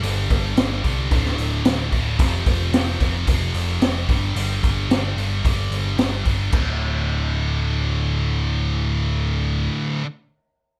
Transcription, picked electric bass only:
\new Staff \with { instrumentName = "Picked electric bass" } { \clef bass \time 4/4 \key d \minor \tempo 4 = 111 g,,8 g,,8 g,,8 c,8 d,,8 d,,8 d,,8 d,,8 | f,,8 f,,8 f,,8 f,,8 f,,8 f,,8 f,,8 g,,8 | g,,8 g,,8 g,,8 g,,8 g,,8 g,,8 g,,8 g,,8 | d,,1~ |
d,,1 | }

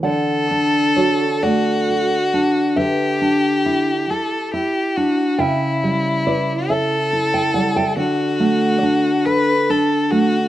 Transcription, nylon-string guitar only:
\new Staff \with { instrumentName = "Nylon-string guitar" } { \time 6/8 \key d \major \tempo 4. = 46 << { <d'' fis''>4 <a' cis''>8 <a' d''>4. | <b' e''>2~ <b' e''>8 r8 | <e'' g''>4 <b' d''>8 <cis'' e''>8. <e'' g''>16 <d'' fis''>16 <e'' g''>16 | <d'' fis''>2~ <d'' fis''>8 r8 | } \\ { d8 d'8 fis'8 a8 fis'8 d'8 | d8 d'8 e'8 g'8 e'8 d'8 | cis8 g8 e'8 a'8 e'8 g8 | d8 a8 d'8 a'8 d'8 a8 | } >> }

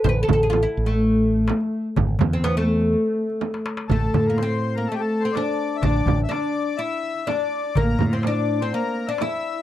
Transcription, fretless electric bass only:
\new Staff \with { instrumentName = "Fretless electric bass" } { \clef bass \time 4/4 \tempo 4 = 124 a,,8 a,,4 a,,2 r8 | gis,,8 e,2 r4. | a,,8 a,2 r4. | a,,8 a,,8 r2. |
a,,8 a,2 r4. | }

